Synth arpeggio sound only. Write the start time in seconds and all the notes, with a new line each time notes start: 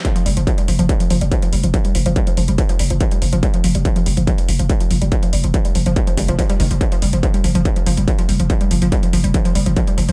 0.05 F3
0.15 F3
0.26 G3
0.37 F3
0.47 F3
0.58 G3
0.68 F3
0.79 F3
0.89 G3
1.00 F3
1.11 F3
1.21 G3
1.32 F3
1.43 F3
1.53 G3
1.64 F3
1.74 F3
1.85 G3
1.95 F3
2.06 F3
2.16 G3
2.27 F3
2.37 F3
2.48 G3
2.58 F3
2.69 F3
2.80 G3
2.90 F3
3.01 F3
3.12 G3
3.22 F3
3.33 F3
3.43 G3
3.54 F3
3.64 F3
3.75 G3
3.85 F3
3.96 F3
4.06 G3
4.17 F3
4.27 F3
4.38 G3
4.49 F3
4.59 F3
4.70 G3
4.81 F3
4.91 F3
5.02 G3
5.12 F3
5.23 F3
5.33 G3
5.44 F3
5.54 F3
5.65 G3
5.75 F3
5.86 F3
5.96 G3
6.07 F3
6.18 G3
6.29 F3
6.39 F3
6.50 G3
6.60 D#3
6.71 F3
6.81 F3
6.92 F3
7.02 G3
7.13 F3
7.23 F3
7.34 G3
7.44 F3
7.55 F3
7.65 G3
7.76 F3
7.87 F3
7.98 G3
8.08 F3
8.19 F3
8.29 G3
8.40 F3
8.50 F3
8.61 G3
8.71 F3
8.82 F3
8.92 G3
9.03 F3
9.13 F3
9.24 G3
9.34 F3
9.45 F3
9.55 G3
9.66 F3
9.77 F3
9.88 G3
9.98 F3
10.09 F3